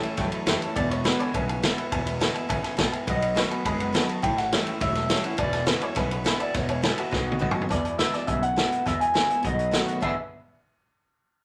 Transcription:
Already playing: A2 E3 A4
0.03 C#4 E4 C#5 E5 A5, muted upright bass stroke, ride
0.17 G1 E2 A2 F#3 C#5 E5 G5, kick, snare, ride
0.32 C#5 E5 B5, muted upright bass stroke, ride
0.46 F#1 A2 E3 G3 C#4 E4 C#5 E5 A5, snare, ride
0.61 C#4 E4 C#5 E5 A5, ride
0.76 E1 E2 B2 B4 D5 E5 G#5, kick, ride
0.91 B4 C#5 E5 B5, ride
1.04 E2 B2 D3 G#3 B3 E4 B4 F#5, snare, ride
1.19 B4 C#5 E5 G#5, muted upright bass stroke, ride
1.34 B1 E2 B2 C#3 B4 E5 G#5, kick, ride
1.48 B4 E5 G#5, ride
1.62 E2 B2 D3 G#3 B3 E4 B4 E5 G#5, snare, ride
1.77 B3 E4 B4 E5 B5, muted upright bass stroke, ride
1.91 E1 E2 B2 B4 E5 G#5, kick, ride
2.05 B4 E5 B5, ride
2.19 E2 B2 D3 G#3 B3 E4 B4 E5 G#5, snare, ride
2.34 B3 E4 B4 E5 G#5, ride
2.48 G#1 E2 G#2 C#3 B4 E5 G#5, kick, ride
2.62 B4 E5 G#5, muted upright bass stroke, snare, ride
2.77 A1 E2 A2 B2 B4 E5 F#5 G#5, kick, snare, ride
2.92 B4 E5 G#5, muted upright bass stroke, ride
3.06 B1 B2 F#3 B4 D#5 F#5, kick, ride
3.22 B4 D#5 F#5, ride
3.34 B2 D#3 F#3 A3 B3 F#4 B4 D#5 F#5, snare, ride
3.39 B4
3.50 B3 F#4 B4 D#5 G#5, muted upright bass stroke, ride
3.65 F#1 F#2 B2 G#3 B4 D#5 G#5, kick, ride
3.79 B4 D#5 F#5, ride
3.93 B2 D#3 F#3 A3 B3 F#4 B4 D#5 A5, snare, ride
4.07 B3 F#4 B4 D#5 A5, muted upright bass stroke, ride
4.22 A1 A2 E3 C#5 E5 G5 A5, kick, ride
4.36 C#5 E5 F#5 A5, snare, ride
4.51 A2 E3 G3 C#4 E4 C#5 E5 A5, snare, ride
4.65 C#4 E4 C#5 E5 G5, muted upright bass stroke, ride
4.79 E1 E2 A2 F#3 C#5 E5 B5, kick, ride
4.95 C#5 E5 A5, snare, ride
5.09 A2 E3 G3 C#4 E4 C#5 E5 A5, snare, ride
5.23 C#4 E4 C#5 E5 F#5, ride
5.37 E1 E2 B2 B4 D5 E5 G#5, kick, ride
5.52 B4 E5 G#5, snare, ride
5.66 E2 B2 D3 G#3 B3 E4 B4 E5 G#5, snare, ride
5.80 B3 E4 B4 C#5 E5 G#5, muted upright bass stroke, ride
5.95 B1 E2 B2 C#3 B4 E5 G#5, kick, snare, ride
6.09 B4 F#5, ride
6.24 E2 B2 D3 G#3 B3 E4 B4 E5 G#5, snare, ride
6.39 B3 E4 B4 D5 E5 G#5, ride
6.54 E1 E2 B2 B4 C#5 E5 F#5, kick, snare, ride
6.68 B4 C#5 E5 G#5, ride
6.82 E2 B2 D3 G#3 B3 E4 B4 E5 G#5, snare, ride
6.97 B3 E4 F#4 B4 E5 G#5, ride
7.10 B1 B2 F#3 B4 D#5 F#5, kick, snare
7.24 B4 D#5 F#5
7.32 high tom
7.39 B2 D#3 F#3 A3 B3 F#4 B4 D#5 F#5, kick, mid tom
7.51 F#4 B4 D#5 G#5, mid tom
7.56 B3, muted upright bass stroke
7.62 floor tom
7.69 E2 B2 B4 D5 E5 G#5, kick, snare, closed hi-hat
7.84 B4 E5 G#5, closed hi-hat
7.98 E2 B2 D3 G#3 B3 E4 B4 E5 B5, snare, closed hi-hat
8.12 B3 E4 B4 D5 E5 G#5, muted upright bass stroke, snare, closed hi-hat
8.27 B1 E2 B2 C#3 B4 E5 G#5, kick, closed hi-hat
8.42 B4 E5 F#5, closed hi-hat
8.56 E2 B2 D3 G#3 B3 E4 B4 E5 G#5, snare, closed hi-hat
8.71 B3 E4 B4 E5 F#5, muted upright bass stroke, closed hi-hat
8.85 E2 B2 B4 E5 G#5, kick, snare, closed hi-hat
8.99 B4 E5 G#5 B5, closed hi-hat
9.13 E2 B2 D3 G#3 B3 E4 B4 E5 G#5, snare, closed hi-hat
9.29 B3 E4 B4 E5 B5, muted upright bass stroke, closed hi-hat
9.43 B1 B2 F#3 B4 D#5 F#5, kick, closed hi-hat
9.47 D#5
9.58 B4 D#5 F#5, closed hi-hat
9.71 B2 D#3 F#3 A3 B3 F#4 B4 D#5 F#5, snare, closed hi-hat
9.87 B4 D#5 F#5, closed hi-hat
10.01 E2 B2 D3 E3 G#3 B3 D4 E4 G#4 B4 E5 G#5, kick, crash

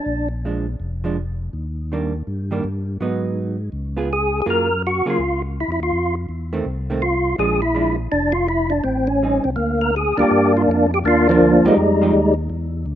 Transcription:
Already playing: D4
0.06 A#1
0.45 F3 G#3 D4
0.80 F1
1.04 F3 G#3 D4
1.53 D#2
1.92 D#3 G3 A#3 D4
2.27 G2
2.51 D#3 G3 A#3 D4
2.64 G2
3.00 G#2 F#3 B3 D#4
3.72 C#2
3.97 B3 F4 G#4
4.13 G#4
4.42 G#4
4.46 F#2 F#3 A#3 F4 G#4
4.50 A#4
4.87 F#4
5.05 C#3 F#3 A#3 F4 G#4
5.10 F4
5.19 C#2
5.61 E4
5.68 F2 E4
5.80 D#2 F4
5.92 F2
6.29 E2
6.53 D#3 A3 C4
6.66 C2
6.90 D#3 A3 C4
7.02 F4
7.38 A#1 F3 G#3 D4 G#4
7.62 E4
7.75 F3 G#3 D4
8.12 F1 D4
8.32 F4
8.48 E4
8.70 D4
8.84 A1 C4
9.07 C#4
9.23 G3 C4 D#4
9.44 C2 C4
9.56 D2 A#3
9.81 A#4
9.96 G#4
10.17 D2 G3 A#3 D4 F4 G4 A#4
10.31 G2
10.57 F4
10.68 F2 D4
10.94 G4
11.04 D#2 A#3 D4 F4
11.29 F3 A#3 D4
11.40 D2
11.63 D2 F3 G3 G#3 D#4 G4
11.68 D#4
11.77 F2
12.01 F3 G#3 D#4 G4
12.13 D#2
12.50 E2
12.86 D2

